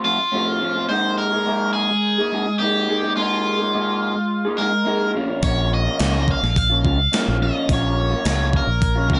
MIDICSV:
0, 0, Header, 1, 6, 480
1, 0, Start_track
1, 0, Key_signature, -5, "minor"
1, 0, Tempo, 566038
1, 763, Time_signature, 4, 2, 24, 8
1, 7799, End_track
2, 0, Start_track
2, 0, Title_t, "Overdriven electric guitar"
2, 0, Program_c, 0, 29
2, 40, Note_on_c, 0, 65, 73
2, 728, Note_off_c, 0, 65, 0
2, 757, Note_on_c, 0, 72, 86
2, 998, Note_off_c, 0, 72, 0
2, 1001, Note_on_c, 0, 70, 88
2, 1465, Note_off_c, 0, 70, 0
2, 1469, Note_on_c, 0, 68, 68
2, 2192, Note_off_c, 0, 68, 0
2, 2196, Note_on_c, 0, 67, 71
2, 2647, Note_off_c, 0, 67, 0
2, 2687, Note_on_c, 0, 65, 74
2, 3885, Note_on_c, 0, 70, 61
2, 3922, Note_off_c, 0, 65, 0
2, 4331, Note_off_c, 0, 70, 0
2, 4612, Note_on_c, 0, 73, 75
2, 4856, Note_off_c, 0, 73, 0
2, 4867, Note_on_c, 0, 75, 93
2, 5350, Note_off_c, 0, 75, 0
2, 5355, Note_on_c, 0, 77, 81
2, 5572, Note_off_c, 0, 77, 0
2, 5583, Note_on_c, 0, 77, 93
2, 6295, Note_off_c, 0, 77, 0
2, 6298, Note_on_c, 0, 75, 80
2, 6538, Note_off_c, 0, 75, 0
2, 6558, Note_on_c, 0, 73, 90
2, 7262, Note_off_c, 0, 73, 0
2, 7266, Note_on_c, 0, 70, 81
2, 7700, Note_off_c, 0, 70, 0
2, 7755, Note_on_c, 0, 65, 75
2, 7799, Note_off_c, 0, 65, 0
2, 7799, End_track
3, 0, Start_track
3, 0, Title_t, "Clean electric guitar"
3, 0, Program_c, 1, 27
3, 35, Note_on_c, 1, 53, 61
3, 43, Note_on_c, 1, 57, 63
3, 44, Note_on_c, 1, 60, 65
3, 52, Note_on_c, 1, 65, 69
3, 150, Note_off_c, 1, 65, 0
3, 154, Note_off_c, 1, 60, 0
3, 156, Note_off_c, 1, 57, 0
3, 159, Note_off_c, 1, 53, 0
3, 269, Note_on_c, 1, 45, 82
3, 279, Note_on_c, 1, 53, 77
3, 282, Note_on_c, 1, 57, 86
3, 289, Note_on_c, 1, 60, 81
3, 293, Note_on_c, 1, 65, 83
3, 507, Note_off_c, 1, 53, 0
3, 516, Note_off_c, 1, 57, 0
3, 517, Note_on_c, 1, 53, 68
3, 519, Note_off_c, 1, 60, 0
3, 526, Note_on_c, 1, 57, 66
3, 529, Note_off_c, 1, 65, 0
3, 529, Note_on_c, 1, 60, 70
3, 539, Note_on_c, 1, 65, 66
3, 631, Note_off_c, 1, 65, 0
3, 641, Note_on_c, 1, 65, 56
3, 645, Note_off_c, 1, 60, 0
3, 654, Note_off_c, 1, 57, 0
3, 655, Note_on_c, 1, 60, 54
3, 664, Note_on_c, 1, 57, 46
3, 742, Note_off_c, 1, 45, 0
3, 746, Note_off_c, 1, 53, 0
3, 748, Note_off_c, 1, 65, 0
3, 755, Note_off_c, 1, 60, 0
3, 757, Note_on_c, 1, 56, 78
3, 760, Note_off_c, 1, 57, 0
3, 765, Note_on_c, 1, 58, 82
3, 774, Note_on_c, 1, 63, 77
3, 777, Note_on_c, 1, 68, 81
3, 1117, Note_off_c, 1, 68, 0
3, 1121, Note_on_c, 1, 68, 69
3, 1132, Note_off_c, 1, 63, 0
3, 1136, Note_on_c, 1, 63, 62
3, 1144, Note_off_c, 1, 58, 0
3, 1147, Note_on_c, 1, 58, 52
3, 1235, Note_off_c, 1, 56, 0
3, 1239, Note_on_c, 1, 56, 85
3, 1247, Note_off_c, 1, 58, 0
3, 1250, Note_on_c, 1, 58, 87
3, 1255, Note_off_c, 1, 63, 0
3, 1259, Note_off_c, 1, 68, 0
3, 1259, Note_on_c, 1, 63, 84
3, 1263, Note_on_c, 1, 68, 89
3, 1609, Note_off_c, 1, 63, 0
3, 1610, Note_off_c, 1, 68, 0
3, 1622, Note_off_c, 1, 58, 0
3, 1842, Note_off_c, 1, 56, 0
3, 1850, Note_on_c, 1, 68, 56
3, 1863, Note_on_c, 1, 63, 51
3, 1868, Note_on_c, 1, 58, 51
3, 1966, Note_on_c, 1, 56, 63
3, 1970, Note_off_c, 1, 63, 0
3, 1971, Note_off_c, 1, 58, 0
3, 1974, Note_on_c, 1, 58, 65
3, 1978, Note_off_c, 1, 68, 0
3, 1980, Note_on_c, 1, 63, 63
3, 1988, Note_on_c, 1, 68, 68
3, 2082, Note_off_c, 1, 68, 0
3, 2089, Note_off_c, 1, 63, 0
3, 2096, Note_off_c, 1, 58, 0
3, 2193, Note_off_c, 1, 56, 0
3, 2204, Note_on_c, 1, 56, 77
3, 2211, Note_on_c, 1, 58, 73
3, 2223, Note_on_c, 1, 63, 84
3, 2225, Note_on_c, 1, 68, 76
3, 2437, Note_off_c, 1, 56, 0
3, 2447, Note_on_c, 1, 56, 55
3, 2450, Note_off_c, 1, 63, 0
3, 2456, Note_off_c, 1, 58, 0
3, 2457, Note_off_c, 1, 68, 0
3, 2460, Note_on_c, 1, 58, 69
3, 2460, Note_on_c, 1, 63, 73
3, 2467, Note_on_c, 1, 68, 67
3, 2556, Note_off_c, 1, 68, 0
3, 2567, Note_on_c, 1, 68, 55
3, 2570, Note_off_c, 1, 63, 0
3, 2580, Note_on_c, 1, 63, 57
3, 2588, Note_off_c, 1, 58, 0
3, 2591, Note_on_c, 1, 58, 45
3, 2674, Note_off_c, 1, 56, 0
3, 2684, Note_on_c, 1, 56, 76
3, 2689, Note_off_c, 1, 58, 0
3, 2689, Note_off_c, 1, 63, 0
3, 2692, Note_on_c, 1, 58, 84
3, 2699, Note_on_c, 1, 63, 79
3, 2700, Note_off_c, 1, 68, 0
3, 2710, Note_on_c, 1, 68, 93
3, 3035, Note_off_c, 1, 68, 0
3, 3045, Note_on_c, 1, 68, 63
3, 3049, Note_off_c, 1, 63, 0
3, 3059, Note_on_c, 1, 63, 62
3, 3066, Note_off_c, 1, 58, 0
3, 3070, Note_on_c, 1, 58, 54
3, 3161, Note_off_c, 1, 56, 0
3, 3171, Note_off_c, 1, 63, 0
3, 3171, Note_on_c, 1, 56, 77
3, 3174, Note_off_c, 1, 58, 0
3, 3177, Note_on_c, 1, 58, 74
3, 3180, Note_off_c, 1, 68, 0
3, 3181, Note_on_c, 1, 63, 83
3, 3190, Note_on_c, 1, 68, 86
3, 3516, Note_off_c, 1, 68, 0
3, 3519, Note_off_c, 1, 63, 0
3, 3530, Note_off_c, 1, 58, 0
3, 3768, Note_off_c, 1, 56, 0
3, 3772, Note_on_c, 1, 68, 59
3, 3784, Note_on_c, 1, 63, 48
3, 3795, Note_on_c, 1, 58, 49
3, 3882, Note_on_c, 1, 56, 63
3, 3889, Note_off_c, 1, 58, 0
3, 3893, Note_on_c, 1, 58, 57
3, 3895, Note_off_c, 1, 63, 0
3, 3897, Note_off_c, 1, 68, 0
3, 3905, Note_on_c, 1, 63, 66
3, 3907, Note_on_c, 1, 68, 68
3, 3987, Note_off_c, 1, 68, 0
3, 3988, Note_off_c, 1, 63, 0
3, 4001, Note_off_c, 1, 58, 0
3, 4101, Note_off_c, 1, 56, 0
3, 4111, Note_on_c, 1, 56, 72
3, 4118, Note_on_c, 1, 58, 74
3, 4125, Note_on_c, 1, 63, 83
3, 4134, Note_on_c, 1, 68, 88
3, 4344, Note_off_c, 1, 56, 0
3, 4351, Note_off_c, 1, 63, 0
3, 4355, Note_off_c, 1, 68, 0
3, 4359, Note_on_c, 1, 46, 74
3, 4367, Note_on_c, 1, 53, 71
3, 4373, Note_off_c, 1, 58, 0
3, 4377, Note_on_c, 1, 58, 73
3, 4379, Note_on_c, 1, 61, 77
3, 4383, Note_on_c, 1, 65, 79
3, 4474, Note_off_c, 1, 65, 0
3, 4477, Note_on_c, 1, 65, 55
3, 4490, Note_off_c, 1, 61, 0
3, 4494, Note_on_c, 1, 61, 55
3, 4496, Note_off_c, 1, 58, 0
3, 4499, Note_on_c, 1, 58, 42
3, 4602, Note_off_c, 1, 46, 0
3, 4605, Note_on_c, 1, 46, 76
3, 4606, Note_off_c, 1, 53, 0
3, 4609, Note_off_c, 1, 58, 0
3, 4610, Note_on_c, 1, 53, 71
3, 4613, Note_on_c, 1, 58, 77
3, 4618, Note_off_c, 1, 61, 0
3, 4620, Note_off_c, 1, 65, 0
3, 4621, Note_on_c, 1, 61, 84
3, 4623, Note_on_c, 1, 65, 76
3, 4961, Note_off_c, 1, 65, 0
3, 4964, Note_on_c, 1, 65, 67
3, 4976, Note_off_c, 1, 61, 0
3, 4979, Note_on_c, 1, 61, 58
3, 4986, Note_off_c, 1, 58, 0
3, 4989, Note_on_c, 1, 58, 54
3, 5075, Note_off_c, 1, 46, 0
3, 5078, Note_off_c, 1, 53, 0
3, 5078, Note_on_c, 1, 46, 74
3, 5082, Note_on_c, 1, 53, 81
3, 5083, Note_off_c, 1, 58, 0
3, 5087, Note_on_c, 1, 58, 84
3, 5089, Note_off_c, 1, 61, 0
3, 5092, Note_on_c, 1, 61, 78
3, 5099, Note_off_c, 1, 65, 0
3, 5102, Note_on_c, 1, 65, 77
3, 5430, Note_off_c, 1, 61, 0
3, 5430, Note_off_c, 1, 65, 0
3, 5436, Note_off_c, 1, 53, 0
3, 5443, Note_off_c, 1, 58, 0
3, 5678, Note_on_c, 1, 65, 56
3, 5681, Note_off_c, 1, 46, 0
3, 5692, Note_on_c, 1, 61, 49
3, 5697, Note_on_c, 1, 58, 45
3, 5797, Note_on_c, 1, 53, 56
3, 5801, Note_off_c, 1, 58, 0
3, 5801, Note_off_c, 1, 61, 0
3, 5804, Note_on_c, 1, 58, 54
3, 5808, Note_off_c, 1, 65, 0
3, 5811, Note_on_c, 1, 61, 64
3, 5819, Note_on_c, 1, 65, 72
3, 5914, Note_off_c, 1, 65, 0
3, 5916, Note_off_c, 1, 61, 0
3, 5926, Note_off_c, 1, 53, 0
3, 5927, Note_off_c, 1, 58, 0
3, 6037, Note_on_c, 1, 46, 68
3, 6045, Note_on_c, 1, 53, 75
3, 6051, Note_on_c, 1, 58, 85
3, 6053, Note_on_c, 1, 61, 80
3, 6059, Note_on_c, 1, 65, 81
3, 6270, Note_off_c, 1, 53, 0
3, 6280, Note_on_c, 1, 53, 66
3, 6283, Note_off_c, 1, 58, 0
3, 6284, Note_off_c, 1, 61, 0
3, 6286, Note_on_c, 1, 58, 59
3, 6294, Note_off_c, 1, 65, 0
3, 6294, Note_on_c, 1, 61, 58
3, 6304, Note_on_c, 1, 65, 73
3, 6390, Note_off_c, 1, 65, 0
3, 6400, Note_on_c, 1, 65, 56
3, 6403, Note_off_c, 1, 61, 0
3, 6414, Note_on_c, 1, 61, 53
3, 6421, Note_off_c, 1, 58, 0
3, 6425, Note_on_c, 1, 58, 51
3, 6505, Note_off_c, 1, 46, 0
3, 6515, Note_on_c, 1, 46, 83
3, 6516, Note_off_c, 1, 53, 0
3, 6526, Note_on_c, 1, 53, 72
3, 6527, Note_off_c, 1, 61, 0
3, 6529, Note_off_c, 1, 58, 0
3, 6529, Note_off_c, 1, 65, 0
3, 6532, Note_on_c, 1, 58, 74
3, 6537, Note_on_c, 1, 61, 87
3, 6539, Note_on_c, 1, 65, 82
3, 6863, Note_off_c, 1, 65, 0
3, 6874, Note_on_c, 1, 65, 64
3, 6875, Note_off_c, 1, 61, 0
3, 6885, Note_on_c, 1, 61, 57
3, 6892, Note_off_c, 1, 58, 0
3, 6895, Note_on_c, 1, 58, 52
3, 6980, Note_off_c, 1, 46, 0
3, 6989, Note_off_c, 1, 53, 0
3, 6990, Note_on_c, 1, 46, 84
3, 6999, Note_off_c, 1, 61, 0
3, 6999, Note_on_c, 1, 53, 78
3, 7002, Note_off_c, 1, 58, 0
3, 7004, Note_off_c, 1, 65, 0
3, 7005, Note_on_c, 1, 58, 75
3, 7009, Note_on_c, 1, 61, 80
3, 7015, Note_on_c, 1, 65, 89
3, 7349, Note_off_c, 1, 65, 0
3, 7351, Note_off_c, 1, 61, 0
3, 7360, Note_off_c, 1, 53, 0
3, 7361, Note_off_c, 1, 58, 0
3, 7595, Note_off_c, 1, 46, 0
3, 7595, Note_on_c, 1, 65, 60
3, 7606, Note_on_c, 1, 61, 61
3, 7620, Note_on_c, 1, 58, 45
3, 7707, Note_on_c, 1, 53, 70
3, 7715, Note_off_c, 1, 58, 0
3, 7715, Note_off_c, 1, 61, 0
3, 7718, Note_on_c, 1, 58, 66
3, 7720, Note_off_c, 1, 65, 0
3, 7725, Note_on_c, 1, 61, 62
3, 7730, Note_on_c, 1, 65, 71
3, 7799, Note_off_c, 1, 53, 0
3, 7799, Note_off_c, 1, 58, 0
3, 7799, Note_off_c, 1, 61, 0
3, 7799, Note_off_c, 1, 65, 0
3, 7799, End_track
4, 0, Start_track
4, 0, Title_t, "Fingered electric bass"
4, 0, Program_c, 2, 33
4, 4601, Note_on_c, 2, 34, 89
4, 4977, Note_off_c, 2, 34, 0
4, 5089, Note_on_c, 2, 37, 77
4, 5367, Note_off_c, 2, 37, 0
4, 5453, Note_on_c, 2, 34, 70
4, 5807, Note_off_c, 2, 34, 0
4, 5807, Note_on_c, 2, 37, 70
4, 5993, Note_off_c, 2, 37, 0
4, 6175, Note_on_c, 2, 34, 70
4, 6357, Note_off_c, 2, 34, 0
4, 6522, Note_on_c, 2, 34, 91
4, 6896, Note_off_c, 2, 34, 0
4, 6999, Note_on_c, 2, 37, 74
4, 7280, Note_off_c, 2, 37, 0
4, 7353, Note_on_c, 2, 34, 71
4, 7714, Note_off_c, 2, 34, 0
4, 7714, Note_on_c, 2, 37, 74
4, 7799, Note_off_c, 2, 37, 0
4, 7799, End_track
5, 0, Start_track
5, 0, Title_t, "Muted clean electric guitar strokes"
5, 160, Note_on_c, 9, 29, 40
5, 245, Note_off_c, 9, 29, 0
5, 1619, Note_on_c, 9, 29, 42
5, 1704, Note_off_c, 9, 29, 0
5, 2092, Note_on_c, 9, 29, 39
5, 2177, Note_off_c, 9, 29, 0
5, 3527, Note_on_c, 9, 29, 40
5, 3611, Note_off_c, 9, 29, 0
5, 3997, Note_on_c, 9, 29, 45
5, 4082, Note_off_c, 9, 29, 0
5, 5440, Note_on_c, 9, 29, 45
5, 5525, Note_off_c, 9, 29, 0
5, 5924, Note_on_c, 9, 29, 41
5, 6009, Note_off_c, 9, 29, 0
5, 7359, Note_on_c, 9, 29, 46
5, 7444, Note_off_c, 9, 29, 0
5, 7799, End_track
6, 0, Start_track
6, 0, Title_t, "Drums"
6, 4602, Note_on_c, 9, 46, 40
6, 4604, Note_on_c, 9, 36, 94
6, 4687, Note_off_c, 9, 46, 0
6, 4689, Note_off_c, 9, 36, 0
6, 5083, Note_on_c, 9, 46, 41
6, 5092, Note_on_c, 9, 38, 89
6, 5168, Note_off_c, 9, 46, 0
6, 5176, Note_off_c, 9, 38, 0
6, 5325, Note_on_c, 9, 36, 67
6, 5409, Note_off_c, 9, 36, 0
6, 5459, Note_on_c, 9, 38, 28
6, 5544, Note_off_c, 9, 38, 0
6, 5566, Note_on_c, 9, 36, 102
6, 5574, Note_on_c, 9, 46, 43
6, 5651, Note_off_c, 9, 36, 0
6, 5659, Note_off_c, 9, 46, 0
6, 5805, Note_on_c, 9, 36, 60
6, 5890, Note_off_c, 9, 36, 0
6, 6047, Note_on_c, 9, 46, 42
6, 6055, Note_on_c, 9, 38, 81
6, 6131, Note_off_c, 9, 46, 0
6, 6140, Note_off_c, 9, 38, 0
6, 6522, Note_on_c, 9, 36, 92
6, 6525, Note_on_c, 9, 46, 46
6, 6607, Note_off_c, 9, 36, 0
6, 6610, Note_off_c, 9, 46, 0
6, 6999, Note_on_c, 9, 46, 46
6, 7007, Note_on_c, 9, 38, 86
6, 7083, Note_off_c, 9, 46, 0
6, 7092, Note_off_c, 9, 38, 0
6, 7237, Note_on_c, 9, 36, 64
6, 7321, Note_off_c, 9, 36, 0
6, 7477, Note_on_c, 9, 36, 93
6, 7478, Note_on_c, 9, 46, 44
6, 7562, Note_off_c, 9, 36, 0
6, 7563, Note_off_c, 9, 46, 0
6, 7715, Note_on_c, 9, 36, 64
6, 7799, Note_off_c, 9, 36, 0
6, 7799, End_track
0, 0, End_of_file